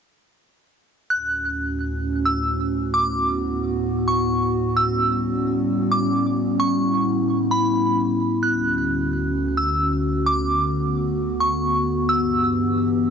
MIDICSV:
0, 0, Header, 1, 3, 480
1, 0, Start_track
1, 0, Key_signature, 2, "major"
1, 0, Tempo, 458015
1, 1155, Time_signature, 4, 2, 24, 8
1, 13730, End_track
2, 0, Start_track
2, 0, Title_t, "Synth bell"
2, 0, Program_c, 0, 98
2, 1155, Note_on_c, 0, 90, 79
2, 1606, Note_off_c, 0, 90, 0
2, 2363, Note_on_c, 0, 88, 85
2, 2587, Note_off_c, 0, 88, 0
2, 3078, Note_on_c, 0, 86, 92
2, 3528, Note_off_c, 0, 86, 0
2, 4272, Note_on_c, 0, 85, 80
2, 4951, Note_off_c, 0, 85, 0
2, 4994, Note_on_c, 0, 88, 98
2, 5446, Note_off_c, 0, 88, 0
2, 6199, Note_on_c, 0, 86, 82
2, 6425, Note_off_c, 0, 86, 0
2, 6914, Note_on_c, 0, 85, 111
2, 7365, Note_off_c, 0, 85, 0
2, 7873, Note_on_c, 0, 83, 85
2, 8792, Note_off_c, 0, 83, 0
2, 8832, Note_on_c, 0, 90, 70
2, 9285, Note_off_c, 0, 90, 0
2, 10033, Note_on_c, 0, 88, 84
2, 10262, Note_off_c, 0, 88, 0
2, 10757, Note_on_c, 0, 86, 98
2, 11207, Note_off_c, 0, 86, 0
2, 11951, Note_on_c, 0, 85, 79
2, 12631, Note_off_c, 0, 85, 0
2, 12669, Note_on_c, 0, 88, 101
2, 13123, Note_off_c, 0, 88, 0
2, 13730, End_track
3, 0, Start_track
3, 0, Title_t, "Ambient pad"
3, 0, Program_c, 1, 92
3, 1156, Note_on_c, 1, 61, 71
3, 1157, Note_on_c, 1, 38, 80
3, 1157, Note_on_c, 1, 45, 73
3, 1157, Note_on_c, 1, 66, 89
3, 3056, Note_off_c, 1, 61, 0
3, 3076, Note_on_c, 1, 59, 71
3, 4957, Note_off_c, 1, 38, 0
3, 4976, Note_off_c, 1, 59, 0
3, 4998, Note_on_c, 1, 55, 73
3, 4998, Note_on_c, 1, 59, 71
3, 4998, Note_on_c, 1, 61, 75
3, 6874, Note_off_c, 1, 66, 0
3, 6916, Note_on_c, 1, 64, 89
3, 8794, Note_off_c, 1, 45, 0
3, 8798, Note_off_c, 1, 55, 0
3, 8798, Note_off_c, 1, 59, 0
3, 8798, Note_off_c, 1, 61, 0
3, 8816, Note_off_c, 1, 64, 0
3, 8835, Note_on_c, 1, 38, 81
3, 8835, Note_on_c, 1, 50, 71
3, 8835, Note_on_c, 1, 61, 70
3, 8835, Note_on_c, 1, 66, 88
3, 10736, Note_off_c, 1, 61, 0
3, 10755, Note_on_c, 1, 59, 74
3, 12636, Note_off_c, 1, 66, 0
3, 12637, Note_off_c, 1, 38, 0
3, 12637, Note_off_c, 1, 50, 0
3, 12676, Note_on_c, 1, 43, 81
3, 12676, Note_on_c, 1, 52, 72
3, 12676, Note_on_c, 1, 67, 90
3, 13730, Note_off_c, 1, 43, 0
3, 13730, Note_off_c, 1, 52, 0
3, 13730, Note_off_c, 1, 59, 0
3, 13730, Note_off_c, 1, 67, 0
3, 13730, End_track
0, 0, End_of_file